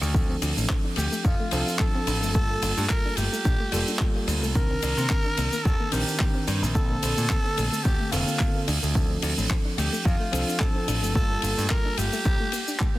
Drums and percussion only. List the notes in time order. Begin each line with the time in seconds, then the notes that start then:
0.03 shaker
0.14 kick, shaker
0.42 open hi-hat, ride, shaker
0.58 shaker
0.69 kick, clap, shaker
0.96 open hi-hat, ride, shaker
1.13 shaker
1.25 kick, shaker
1.51 open hi-hat, ride, shaker
1.68 shaker
1.79 kick, clap, shaker
2.07 open hi-hat, ride, shaker
2.23 shaker
2.35 kick, shaker
2.62 open hi-hat, ride, shaker
2.78 open hi-hat, shaker
2.89 kick, clap, shaker
3.17 open hi-hat, ride, shaker
3.33 shaker
3.45 kick, shaker
3.72 open hi-hat, ride, shaker
3.88 shaker
3.99 kick, clap, shaker
4.28 open hi-hat, ride, shaker
4.43 shaker
4.55 kick, shaker
4.82 open hi-hat, ride, shaker
4.98 shaker
5.10 kick, clap, shaker
5.37 open hi-hat, ride, shaker
5.53 shaker
5.65 kick, shaker
5.92 open hi-hat, ride, shaker
6.08 shaker
6.19 kick, clap, shaker
6.47 open hi-hat, ride, shaker
6.64 shaker
6.75 kick, shaker
7.02 open hi-hat, ride, shaker
7.17 open hi-hat, shaker
7.30 kick, clap, shaker
7.57 open hi-hat, ride, shaker
7.73 shaker
7.85 kick, shaker
8.12 open hi-hat, ride, shaker
8.28 shaker
8.39 kick, clap, shaker
8.68 open hi-hat, ride, shaker
8.83 shaker
8.95 kick, shaker
9.22 open hi-hat, ride, shaker
9.38 shaker
9.50 kick, clap, shaker
9.78 open hi-hat, ride, shaker
9.94 shaker
10.05 kick, shaker
10.33 open hi-hat, ride, shaker
10.49 shaker
10.60 kick, clap, shaker
10.88 open hi-hat, ride, shaker
11.04 shaker
11.15 kick, shaker
11.42 open hi-hat, ride, shaker
11.57 open hi-hat, shaker
11.70 kick, clap, shaker
11.97 open hi-hat, ride, shaker
12.13 shaker
12.25 kick, shaker
12.52 open hi-hat, ride, shaker
12.68 shaker
12.80 kick, clap, shaker